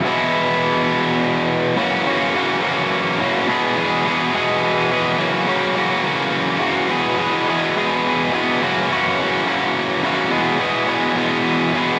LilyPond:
\new Staff \with { instrumentName = "Overdriven electric guitar" } { \clef bass \time 6/8 \key fis \mixolydian \tempo 4. = 70 <e, b, e gis b e'>2. | <fis, cis e ais cis' fis'>8 <fis, cis e ais cis' fis'>8 <fis, cis e ais cis' fis'>8 <fis, cis e ais cis' fis'>4 <fis, cis e ais cis' fis'>8 | <e, b, e gis b gis'>8 <e, b, e gis b gis'>8 <e, b, e gis b gis'>8 <e, b, e gis b gis'>4 <e, b, e gis b gis'>8 | <fis, cis e ais cis' fis'>8 <fis, cis e ais cis' fis'>8 <fis, cis e ais cis' fis'>8 <fis, cis e ais cis' fis'>4 <fis, cis e ais cis' fis'>8 |
<e, b, e gis b gis'>8 <e, b, e gis b gis'>8 <e, b, e gis b gis'>8 <e, b, e gis b gis'>4 <e, b, e gis b gis'>8 | <fis, cis e ais cis' fis'>8 <fis, cis e ais cis' fis'>8 <fis, cis e ais cis' fis'>8 <fis, cis e ais cis' fis'>4 <fis, cis e ais cis' fis'>8 | <e, b, e gis b gis'>8 <e, b, e gis b gis'>8 <e, b, e gis b gis'>8 <e, b, e gis b gis'>4 <e, b, e gis b gis'>8 | }